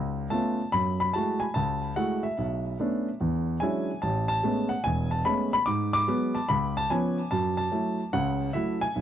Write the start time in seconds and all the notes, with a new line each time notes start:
Already playing: C#2
0.30 A3 B3 C#4 F4 A5
0.72 F#2 B5
1.00 B5
1.13 G#3 A3 E4 F#4 A5
1.40 G#5
1.54 C#2 A5
1.96 G#3 A3 E4 F#4 F#5
2.23 E5
2.38 B1
2.80 A3 B3 C#4 D4
3.21 E2
3.60 F#3 G#3 C#4 D4 E4 G#5
4.02 A1 A5
4.28 A5
4.43 G#3 A3 B3 C#4
4.69 F#5
4.84 E1 G#5
5.11 A5
5.25 G#3 A3 B3 C#4 B5
5.53 B5
5.66 G#2 D6
5.93 D6
6.07 F#3 G#3 B3
6.35 A5
6.49 C#2 B5
6.77 A5
6.90 F3 B3 C#4 G#5
7.31 F#2 F#3 A5
7.57 A5
7.71 F#3 A3 E4
8.13 C#2 C#3 F#5
8.53 F#3 A3 E4 E5
8.81 G#5
8.96 B1